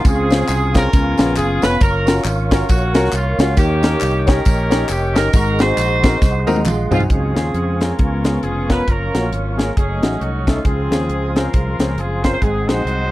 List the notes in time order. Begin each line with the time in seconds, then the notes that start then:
Already playing: C4 G#5
0.04 C#2 C#3 C4 F4 G#4 F5 C#6, kick, closed hi-hat, tambourine
0.30 C4 C#4 F4 G#4, snare, closed hi-hat, tambourine
0.49 C2, clap, closed hi-hat, tambourine
0.74 C4 C#4 F4 G#4 A#4, kick, snare, closed hi-hat, tambourine
0.93 C#2 C#3 B3 F5, kick, closed hi-hat, tambourine
1.17 A#1 B3 C#4 F4 G#4, snare, closed hi-hat, tambourine
1.36 F#1 G#4, clap, closed hi-hat, tambourine
1.62 F1 B3 C#4 F4 B4, snare, closed hi-hat, tambourine
1.81 F#1 C#4 F4 A#4 C#5, kick, closed hi-hat, tambourine
2.06 C#4 F4 F#4 A#4, snare, closed hi-hat, tambourine
2.24 G#1, clap, closed hi-hat, tambourine
2.51 C#4 F4 F#4 A#4 C#5, kick, snare, closed hi-hat, tambourine
2.69 A#1 A#3 C#4 F#4, kick, closed hi-hat, tambourine
2.94 C2 C#4 F4 F#4 A#4, snare, closed hi-hat, tambourine
3.13 C2 F4, clap, closed hi-hat, tambourine
3.38 C#2 C#4 F4 F#4 C#5, snare, closed hi-hat, tambourine
3.56 D#2 D#3 A#3 C#4 G4 D#5 G5, kick, closed hi-hat, tambourine
3.83 C#4 D#4 G4 A#4, snare, closed hi-hat, tambourine
4.01 C2, clap, closed hi-hat, tambourine
4.27 C#4 D#4 G4 A#4 C#5, kick, snare, closed hi-hat, tambourine
4.45 A#1, kick, closed hi-hat, tambourine
4.70 C#4 D#4 G4 C#5, snare, closed hi-hat, tambourine
4.89 F1 G4, clap, closed hi-hat, tambourine
5.15 G1 C#4 D#4 G4 A#4, snare, closed hi-hat, tambourine
5.33 G#1 G#2 D#4 F#4 G#4 A#4 F#5 C6, kick, closed hi-hat, tambourine
5.59 C4 D#4 F#4 G#4 C5, snare, closed hi-hat, tambourine
5.77 A#1, clap, closed hi-hat, tambourine
6.03 C4 D#4 F#4 A#4, kick, snare, closed hi-hat, tambourine
6.21 C2, kick, snare, tambourine
6.47 D#2 F#3 C4 D#4 F#4 A#4, high tom, tambourine
6.56 high tom
6.65 A#1 G#3 F4, clap, mid tom, tambourine
6.91 C2 F#3 C4 D#4 F4 F#4 G#4, floor tom, tambourine
7.01 floor tom
7.09 C#2 C#3 F3 G#3 C4 G#4 F5 G#5 C#6, kick, closed hi-hat
7.13 F4
7.35 D#2 C4 C#4 F4 G#4, snare, closed hi-hat
7.54 F2, closed hi-hat
7.80 C4 C#4 F4 G#4 A#4, snare, closed hi-hat
7.98 C#2 C#3 B3 C#4 G#5 C#6, kick, closed hi-hat
8.24 B3 C#4 F4 G#4, snare, closed hi-hat
8.43 F1 G#4, closed hi-hat
8.69 B3 C#4 F4 A#4 B4, kick, snare, closed hi-hat
8.87 F#1 F#3 A#3 C#4 F4 A#4 C#5, kick, closed hi-hat
9.14 A#1 A#3 C#4 F4 F#4, snare, closed hi-hat
9.32 G#1, closed hi-hat
9.57 A#3 C#4 F4 G#4 A#4, snare, closed hi-hat
9.76 F#1 A3 C#4 D#4 G#4 D#5, kick, closed hi-hat
10.02 A1 A3 C#4 D#4 F#4, snare, closed hi-hat
10.20 C2 F#4, closed hi-hat
10.47 A3 C#4 D#4 F4 A4, kick, snare, closed hi-hat
10.64 C#2 C#3 F3 G#3 C4 F4 G#4 C5 F5 C6, kick, closed hi-hat
10.91 D#2 C4 C#4 F4 G#4, snare, closed hi-hat
11.09 C#2, closed hi-hat
11.36 C4 C#4 F4 G#4 A#4, snare, closed hi-hat
11.53 C2, kick, closed hi-hat
11.79 C#2 C4 C#4 F4 G#4, snare, closed hi-hat
11.96 F#1 G#4, closed hi-hat
12.24 C4 C#4 F4 A#4 C5, kick, snare, closed hi-hat
12.33 C5
12.41 G#1 G#2 F#3 G#3 C4 D#4 G#4 D#5 F#5, kick, closed hi-hat
12.67 A#1 C4 D#4 F#4 G#4 C5, snare, closed hi-hat
12.85 C2, closed hi-hat